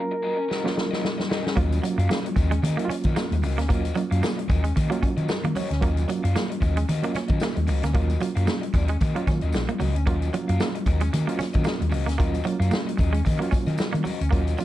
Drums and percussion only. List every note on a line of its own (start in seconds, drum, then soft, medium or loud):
0.51 snare medium
0.66 snare medium
0.78 snare medium
0.93 snare medium
1.05 snare medium
1.19 snare medium
1.31 snare loud
1.47 snare medium
1.57 kick loud
1.57 closed hi-hat medium
1.57 muted conga soft
1.72 closed hi-hat soft
1.72 tambourine medium
1.83 closed hi-hat medium
1.83 tambourine medium
1.99 closed hi-hat medium
2.09 snare loud
2.09 tambourine loud
2.09 muted conga soft
2.09 high conga medium
2.26 closed hi-hat medium
2.36 kick loud
2.36 closed hi-hat medium
2.36 tambourine medium
2.36 low conga medium
2.52 closed hi-hat medium
2.63 closed hi-hat loud
2.63 tambourine medium
2.63 muted conga soft
2.63 high conga loud
2.63 low conga medium
2.79 closed hi-hat medium
2.88 closed hi-hat medium
2.88 tambourine medium
2.88 high conga medium
3.03 kick medium
3.03 closed hi-hat soft
3.03 tambourine soft
3.16 snare loud
3.16 tambourine loud
3.30 closed hi-hat soft
3.30 tambourine soft
3.30 high conga medium
3.42 open hi-hat medium
3.42 tambourine medium
3.42 muted conga soft
3.42 low conga medium
3.59 snare soft
3.59 closed hi-hat medium
3.70 kick loud
3.70 closed hi-hat medium
3.85 closed hi-hat medium
3.85 tambourine medium
3.95 closed hi-hat medium
3.95 tambourine medium
3.95 muted conga soft
4.12 closed hi-hat medium
4.21 snare loud
4.21 tambourine loud
4.21 muted conga soft
4.21 high conga medium
4.39 closed hi-hat medium
4.48 kick loud
4.48 closed hi-hat medium
4.48 tambourine medium
4.48 low conga medium
4.64 closed hi-hat medium
4.64 tambourine soft
4.76 kick loud
4.76 closed hi-hat loud
4.76 tambourine medium
4.76 muted conga soft
4.76 high conga loud
4.76 low conga medium
4.92 closed hi-hat medium
5.01 kick medium
5.01 closed hi-hat medium
5.01 tambourine medium
5.01 muted conga soft
5.01 high conga medium
5.17 closed hi-hat soft
5.17 tambourine soft
5.29 snare loud
5.29 tambourine medium
5.43 closed hi-hat soft
5.43 high conga medium
5.55 open hi-hat medium
5.55 tambourine medium
5.55 low conga medium
5.71 snare soft
5.71 closed hi-hat medium
5.82 kick loud
5.82 closed hi-hat medium
5.97 closed hi-hat soft
5.97 tambourine medium
6.08 closed hi-hat medium
6.08 tambourine medium
6.08 muted conga soft
6.25 closed hi-hat medium
6.34 snare loud
6.34 tambourine loud
6.34 high conga medium
6.51 closed hi-hat medium
6.61 kick loud
6.61 closed hi-hat medium
6.61 tambourine medium
6.61 low conga medium
6.77 closed hi-hat medium
6.77 tambourine soft
6.89 closed hi-hat medium
6.89 tambourine medium
6.89 high conga medium
6.89 low conga medium
7.03 closed hi-hat medium
7.14 snare soft
7.14 closed hi-hat medium
7.14 tambourine medium
7.14 muted conga soft
7.14 high conga medium
7.28 kick loud
7.28 closed hi-hat soft
7.28 tambourine soft
7.40 snare loud
7.40 tambourine medium
7.56 closed hi-hat soft
7.56 tambourine soft
7.56 high conga medium
7.67 open hi-hat medium
7.67 tambourine medium
7.67 muted conga soft
7.67 low conga medium
7.83 snare soft
7.83 closed hi-hat medium
7.95 kick loud
7.95 closed hi-hat medium
7.95 muted conga soft
8.10 closed hi-hat soft
8.10 tambourine medium
8.10 high conga medium
8.20 closed hi-hat medium
8.20 tambourine medium
8.36 closed hi-hat medium
8.47 snare loud
8.47 tambourine medium
8.47 muted conga soft
8.47 high conga medium
8.63 closed hi-hat medium
8.74 kick medium
8.74 closed hi-hat medium
8.74 tambourine medium
8.74 muted conga soft
8.74 low conga medium
8.88 closed hi-hat medium
9.01 kick loud
9.01 closed hi-hat medium
9.01 tambourine medium
9.01 muted conga soft
9.01 high conga medium
9.01 low conga medium
9.16 closed hi-hat medium
9.27 kick loud
9.27 snare soft
9.27 closed hi-hat medium
9.27 tambourine medium
9.27 muted conga soft
9.27 high conga medium
9.41 closed hi-hat soft
9.41 tambourine soft
9.52 snare loud
9.52 tambourine medium
9.52 muted conga soft
9.69 closed hi-hat soft
9.69 high conga medium
9.80 open hi-hat medium
9.80 tambourine medium
9.80 muted conga soft
9.80 low conga medium
9.96 closed hi-hat medium
9.96 tambourine soft
10.07 kick loud
10.07 closed hi-hat medium
10.07 muted conga soft
10.22 closed hi-hat soft
10.22 tambourine medium
10.33 closed hi-hat medium
10.33 tambourine medium
10.49 closed hi-hat medium
10.59 snare loud
10.59 tambourine loud
10.59 high conga medium
10.75 closed hi-hat soft
10.86 kick loud
10.86 closed hi-hat medium
10.86 tambourine medium
10.86 muted conga soft
10.86 low conga medium
11.00 closed hi-hat medium
11.00 tambourine soft
11.13 closed hi-hat medium
11.13 tambourine medium
11.13 high conga medium
11.13 low conga medium
11.29 closed hi-hat medium
11.39 snare soft
11.39 closed hi-hat medium
11.39 tambourine medium
11.39 muted conga soft
11.39 high conga medium
11.53 kick loud
11.53 closed hi-hat soft
11.53 tambourine soft
11.64 snare loud
11.64 tambourine medium
11.64 muted conga soft
11.80 closed hi-hat medium
11.80 high conga medium
11.92 open hi-hat medium
11.92 tambourine medium
11.92 muted conga soft
11.92 low conga medium
12.08 snare soft
12.08 closed hi-hat medium
12.08 tambourine soft
12.20 kick loud
12.20 closed hi-hat medium
12.34 closed hi-hat soft
12.34 tambourine medium
12.44 closed hi-hat medium
12.44 tambourine medium
12.62 closed hi-hat medium
12.71 snare loud
12.71 tambourine medium
12.71 muted conga soft
12.71 high conga medium
12.89 closed hi-hat medium
12.98 kick medium
12.98 closed hi-hat medium
12.98 tambourine medium
12.98 muted conga soft
12.98 low conga medium
13.14 closed hi-hat medium
13.25 kick medium
13.25 closed hi-hat medium
13.25 tambourine medium
13.25 high conga medium
13.25 low conga medium
13.42 closed hi-hat medium
13.52 kick loud
13.52 closed hi-hat medium
13.52 tambourine medium
13.52 muted conga soft
13.52 high conga medium
13.66 closed hi-hat soft
13.66 tambourine soft
13.78 snare loud
13.78 tambourine loud
13.78 muted conga soft
13.94 closed hi-hat soft
13.94 tambourine soft
13.94 high conga medium
14.05 open hi-hat medium
14.05 tambourine medium
14.05 low conga medium
14.21 closed hi-hat medium
14.21 tambourine soft
14.33 kick loud
14.33 closed hi-hat medium
14.47 closed hi-hat medium
14.47 tambourine medium
14.58 closed hi-hat medium
14.58 tambourine medium
14.58 muted conga soft